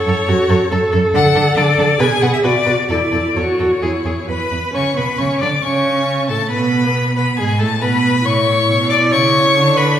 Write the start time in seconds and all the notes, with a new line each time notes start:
Already playing: A4 C#5
0.07 F#2 A4
0.28 F#2 F#4 A4
0.49 F#2 A4
0.71 F#2 A4
0.92 F#2 A4
1.14 D3 A4 F#5
1.35 D3 A4
1.57 D3 A4 D5
1.78 D3 A4
2.00 B2 G#4 B4 G#5
2.22 B2 B4 F#5
2.33 E5
2.44 B2 F#4 B4 D5
2.66 B2 B4
2.88 E2 E4 A4 D5
3.12 E2 A4
3.36 E2 F#4 A4 C#5
3.59 E2 A4
3.82 E2 E4 G#4
4.05 E2 G#4
4.28 E2 B4 B5
4.52 E2
4.74 C#3 C#4 C#5 C#6
4.97 B2 B3 B4 B5
5.18 C#3 C#4 C#5 C#6
5.40 D3 D4 D5 D6
5.62 C#3 C#4 C#5 C#6
6.28 A2 A3 A4 A5
6.50 B2 B3 B4 B5
7.16 B2 B3 B4 B5
7.37 G#2 G#3 G#4 G#5
7.59 A2 A3 A4 A5
7.80 B2 B3 B4 B5
8.25 A2 E4 C#5 C#6
8.69 B2
8.90 D5 D6
9.11 C#3 C#5 C#6
9.56 D3
9.77 B4 B5